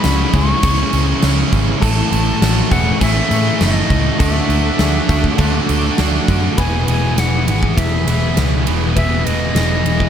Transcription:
Already playing: overdriven electric guitar C#3, distorted electric guitar G#3 C#4, analog synth pad G#3 E4 C#5 C#6, flute B5
0.02 picked electric bass C#2, distorted electric guitar C#3, overdriven electric guitar E3 G#3 C#4 E4, clean electric guitar F#4, snare, crash
0.32 picked electric bass C#2, overdriven electric guitar G#3 C#4 E4, clean electric guitar G#4, flute C#6, kick, crash
0.63 picked electric bass C#2, overdriven electric guitar C#3 E3 G#3 C#4 E4, clean electric guitar G#4, kick, crash
0.92 picked electric bass C#2, distorted electric guitar G#3 C#4, crash
1.22 picked electric bass C#2, distorted electric guitar C#3, overdriven electric guitar E3 G#3 C#4 E4, snare, crash
1.52 picked electric bass G#1, distorted electric guitar G#3 C#4, kick, crash
1.82 picked electric bass A1, overdriven electric guitar A2 E3 A3 C#4 E4, analog synth pad A3 C#6, clean electric guitar A4, flute A5, kick, crash
2.12 picked electric bass A1, distorted electric guitar E3 A3, crash
2.41 picked electric bass A1, distorted electric guitar A2, overdriven electric guitar E3 A3 C#4 E4, clean electric guitar F#4, snare, crash
2.71 picked electric bass E1, distorted electric guitar E3, overdriven electric guitar A3 C#4 E4, clean electric guitar G#4, flute F#5, kick, crash
3.00 picked electric bass A1, overdriven electric guitar A2 E3 A3 C#4 E4, clean electric guitar G#4, flute E5, kick, crash
3.31 picked electric bass A2, distorted electric guitar E3 A3, crash
3.60 picked electric bass F#1, distorted electric guitar A2, overdriven electric guitar E3 A3 C#4 E4, flute D#5, snare, crash
3.90 picked electric bass C#2, distorted electric guitar E3 A3, kick, crash
4.19 picked electric bass D2, overdriven electric guitar D3 A3 D4 F#4, clean electric guitar A4, flute E5, analog synth pad E5 F#5 D6, kick, crash
4.49 picked electric bass D2, distorted electric guitar A3 D4, crash
4.78 picked electric bass D2, overdriven electric guitar D3 A3 D4 F#4, clean electric guitar G#4, snare, crash
5.08 picked electric bass D2, overdriven electric guitar A3 D4 F#4, clean electric guitar A4, kick, crash
5.24 kick
5.38 picked electric bass D2, overdriven electric guitar D3 A3 D4 F#4, clean electric guitar A4, kick, crash
5.67 picked electric bass D2, distorted electric guitar A3 D4, crash
5.97 picked electric bass D2, overdriven electric guitar D3 A3 D4 F#4, snare, crash
6.27 picked electric bass F#2, distorted electric guitar A3 D4, kick, crash
6.58 picked electric bass E1, overdriven electric guitar E2 B2 E3 G#3 B3 E4, analog synth pad E4 B4 G#5 D#6, clean electric guitar B4, flute G#5, kick, ride
6.87 picked electric bass E1, distorted electric guitar B2, overdriven electric guitar E3 G#3 B3 E4, flute G#5, ride
7.16 picked electric bass E1, distorted electric guitar E2 B2, overdriven electric guitar E3 G#3 B3 E4, clean electric guitar G#4, flute F#5, snare, ride
7.46 picked electric bass G#1, distorted electric guitar B2 E3, flute F#5, ride
7.63 kick
7.77 picked electric bass E1, clean electric guitar E4, flute E5, kick, ride
8.07 picked electric bass E1, distorted electric guitar B2, overdriven electric guitar E3 G#3 B3 E4, ride
8.36 picked electric bass C#2, distorted electric guitar E2 B2, overdriven electric guitar E3 G#3 B3 E4, clean electric guitar B4, snare, ride
8.65 picked electric bass E1, distorted electric guitar E2 B2, overdriven electric guitar E3 G#3 B3 E4, ride
8.95 picked electric bass E1, overdriven electric guitar E2 B2 E3 G#3 B3 E4, clean electric guitar B4, flute E5, kick, ride
9.25 picked electric bass E1, distorted electric guitar B2, overdriven electric guitar E3 G#3 B3 E4, flute D#5, ride
9.55 picked electric bass E1, distorted electric guitar E2 B2, overdriven electric guitar E3 G#3 B3 E4, clean electric guitar G#4, snare, ride
9.84 picked electric bass E1, distorted electric guitar B2 E3, ride
10.00 kick

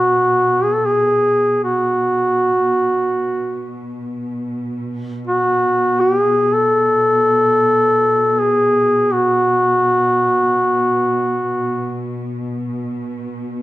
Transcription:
Already playing: cello section B2, duduk F#4
0.64 duduk G#4
0.75 duduk A4
0.86 duduk G#4
1.64 duduk F#4
2.59 cello section B2
5.28 duduk F#4
6.00 duduk G4
6.20 duduk G#4
6.54 duduk A4
8.40 duduk G#4
9.13 duduk F#4

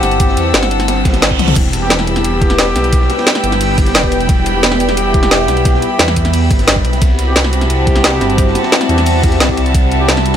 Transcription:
Already playing: analog synth pad G3 C4 E4 C5, brass ensemble C4 E4 G4, string section F#5 A5 E6
0.03 detuned saw bass G1, snare, closed hi-hat, ride
0.11 closed hi-hat
0.20 kick, closed hi-hat, ride
0.28 snare
0.37 detuned saw bass E2, closed hi-hat, ride
0.45 brass ensemble C4 E4 G4
0.54 detuned saw bass G1, snare, closed hi-hat, ride
0.63 snare, closed hi-hat
0.71 closed hi-hat, ride
0.80 snare, closed hi-hat
0.88 snare, closed hi-hat, ride, reverse cymbal
1.05 kick, snare, closed hi-hat, ride
1.13 snare, closed hi-hat, ride
1.22 snare, closed hi-hat, ride
1.31 kick
1.39 detuned saw bass C2, closed hi-hat, high tom, ride
1.48 closed hi-hat, mid tom
1.56 detuned saw bass E1, analog synth pad G3 B3 B4, string section G4, kick, closed hi-hat, crash, ride
1.73 closed hi-hat, ride
1.79 brass ensemble B3 E4 G4, string section B5
1.90 detuned saw bass E1, snare, closed hi-hat, ride
1.99 snare
2.07 brass ensemble B3 E4 G4, closed hi-hat, ride
2.16 snare, closed hi-hat
2.24 detuned saw bass E1, closed hi-hat, ride
2.42 kick, closed hi-hat, ride
2.50 string section G5, snare, closed hi-hat
2.58 snare, closed hi-hat, ride
2.67 snare
2.75 detuned saw bass B1, snare, closed hi-hat, ride
2.84 closed hi-hat
2.93 kick, closed hi-hat, ride
3.01 snare
3.10 snare, closed hi-hat, ride
3.18 brass ensemble B3 E4 G4, snare, ride
3.27 snare, closed hi-hat, ride
3.35 snare, closed hi-hat
3.43 detuned saw bass G1, brass ensemble B3 E4 G4, closed hi-hat, ride
3.52 snare, closed hi-hat
3.61 closed hi-hat, open hi-hat
3.78 brass ensemble B3 E4 G4, kick, closed hi-hat, ride
3.86 snare, closed hi-hat
3.94 detuned saw bass E1, snare, closed hi-hat, ride
4.03 brass ensemble B3 E4 G4, kick, snare
4.11 closed hi-hat, ride
4.20 closed hi-hat
4.29 detuned saw bass E1, analog synth pad E5, kick, closed hi-hat, ride
4.46 closed hi-hat, ride
4.54 brass ensemble B3 E4 G4
4.63 detuned saw bass E1, snare, closed hi-hat, ride
4.72 snare
4.80 brass ensemble B3 E4 G4, closed hi-hat, ride
4.89 snare, closed hi-hat
4.97 detuned saw bass E1, closed hi-hat, ride
5.14 kick, closed hi-hat, ride
5.23 snare, closed hi-hat
5.31 snare, closed hi-hat, ride
5.40 snare
5.48 detuned saw bass B1, snare, closed hi-hat, ride
5.57 closed hi-hat
5.65 kick, closed hi-hat, ride
5.74 snare
5.82 closed hi-hat, ride
5.91 brass ensemble B3 E4 G4
5.99 detuned saw bass E2, snare, closed hi-hat, ride
6.08 snare, closed hi-hat
6.16 kick, closed hi-hat, ride
6.25 snare, closed hi-hat
6.33 closed hi-hat, open hi-hat
6.51 detuned saw bass G1, kick, closed hi-hat, ride
6.59 snare, closed hi-hat
6.67 snare, closed hi-hat, ride
6.76 kick, snare
6.85 detuned saw bass B1, closed hi-hat, ride
6.93 snare, closed hi-hat
7.01 detuned saw bass C2, analog synth pad G3 C4 E4 C5, string section F#4, kick, closed hi-hat, ride
7.19 closed hi-hat, ride
7.27 brass ensemble C4 E4 G4
7.36 detuned saw bass C2, snare, closed hi-hat, ride
7.44 string section E5, snare
7.51 brass ensemble C4 E4 G4, string section A5, closed hi-hat, ride
7.61 snare, closed hi-hat
7.70 detuned saw bass C2, closed hi-hat, ride
7.87 kick, closed hi-hat, ride
7.96 snare, closed hi-hat
8.04 snare, closed hi-hat, ride
8.12 snare
8.21 detuned saw bass G1, snare, closed hi-hat, ride
8.30 closed hi-hat
8.38 kick, closed hi-hat, ride
8.47 snare
8.55 snare, closed hi-hat, ride
8.63 brass ensemble C4 E4 G4, snare, ride
8.72 snare, closed hi-hat, ride
8.81 snare, closed hi-hat
8.89 detuned saw bass E2, brass ensemble C4 E4 G4, closed hi-hat, ride
8.98 snare, closed hi-hat
9.06 closed hi-hat, open hi-hat
9.23 brass ensemble C4 E4 G4, kick, closed hi-hat, ride
9.32 snare, closed hi-hat
9.40 detuned saw bass C2, snare, closed hi-hat, ride
9.49 brass ensemble C4 E4 G4, kick, snare
9.57 closed hi-hat, ride
9.66 closed hi-hat
9.74 detuned saw bass C2, analog synth pad B4, kick, closed hi-hat, ride
9.92 closed hi-hat, ride
10.00 brass ensemble C4 E4 G4
10.08 detuned saw bass C2, snare, closed hi-hat, ride
10.17 snare
10.26 closed hi-hat, ride

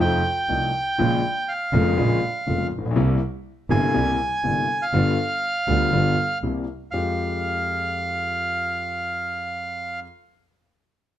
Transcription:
0.00 grand piano F2 C3 F3 A3 D#4, double bass F2, bandoneon G5
0.49 grand piano C2 C3 F3 A3 D#4, double bass C2
0.98 double bass A#1, grand piano A#1 A#2 C#3 G#3 A#3 F4
1.48 bandoneon F5
1.73 grand piano F1 F2 C#3 G#3 A#3 F4, double bass F1
1.97 grand piano A#1 A#2 C#3 G#3 A#3 F4, double bass A#1
2.46 grand piano F1 F2 C#3 G#3 A#3 F4, double bass F1
2.73 double bass A#1
2.78 grand piano A1
2.85 grand piano A#1
2.91 grand piano B1
2.96 grand piano C2 C3 G3 A#3 E4, double bass C2
3.70 double bass G1, grand piano G1 G2 C3 G3 A#3 E4, bandoneon G#5
3.94 grand piano C2 C3 G3 A#3 E4, double bass C2
4.43 grand piano G1 G2 C3 G3 A#3 E4, double bass G1
4.82 bandoneon F5
4.93 double bass G1, grand piano G1 G2 D3 G3 B3 F4
5.68 double bass D2, grand piano D2 D3 G3 B3 F4
5.92 double bass G1, grand piano G1 G2 D3 G3 B3 F4
6.42 double bass C2, grand piano C2 C3 G3 A#3 E4
6.91 double bass F2, grand piano F2 G#3 F4 G4, bandoneon F5

